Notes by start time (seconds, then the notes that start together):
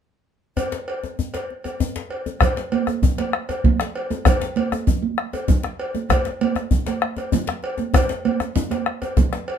0.57 cowbell, djembe bass
0.72 djembe slap
0.88 cowbell
1.04 djembe tone
1.19 djembe bass
1.34 cowbell, djembe slap
1.50 djembe slap
1.64 cowbell, djembe tone
1.80 djembe bass
1.96 djembe slap
2.10 cowbell, djembe slap
2.26 djembe slap, djembe tone
2.41 bombo rim, bombo low, cowbell, djembe slap, low conga, djembe bass
2.57 bombo rim, djembe slap, high conga
2.72 cowbell, high conga
2.87 bombo rim, djembe tone
3.02 bombo low, high conga, djembe bass, low conga
3.18 cowbell, djembe slap, high conga
3.33 bombo rim
3.49 cowbell, djembe tone
3.64 bombo low, high conga, low conga
3.80 bombo rim, djembe slap
3.95 cowbell, djembe slap
4.10 high conga, djembe tone
4.25 bombo rim, bombo low, cowbell, djembe slap, low conga, djembe bass
4.41 bombo rim, djembe slap, high conga
4.56 cowbell, high conga
4.72 bombo rim, djembe tone
4.87 bombo low, high conga, low conga, djembe bass
5.02 high conga
5.18 bombo rim
5.33 cowbell, djembe tone
5.48 bombo low, high conga, djembe bass, low conga
5.63 bombo rim, djembe slap
5.80 cowbell, djembe slap
5.95 djembe tone, high conga
6.10 bombo rim, bombo low, cowbell, djembe slap, djembe bass, low conga
6.25 bombo rim, djembe slap, high conga
6.41 cowbell, high conga
6.56 bombo rim, djembe tone
6.71 bombo low, high conga, djembe bass, low conga
6.86 cowbell, djembe slap, high conga
7.02 bombo rim
7.17 cowbell, djembe tone
7.32 high conga, djembe bass, low conga
7.47 bombo rim, djembe slap
7.63 cowbell, djembe slap
7.78 djembe tone, high conga
7.94 bombo rim, bombo low, cowbell, djembe bass, low conga
8.09 djembe slap, high conga
8.25 cowbell, high conga
8.40 bombo rim, djembe slap, djembe tone
8.56 high conga, low conga, djembe bass
8.71 bombo rim, cowbell, djembe slap, high conga
8.86 bombo rim, djembe slap, high conga
9.02 cowbell, djembe tone
9.17 bombo rim, bombo low, djembe slap, high conga, djembe bass, low conga
9.33 bombo rim, djembe slap
9.48 cowbell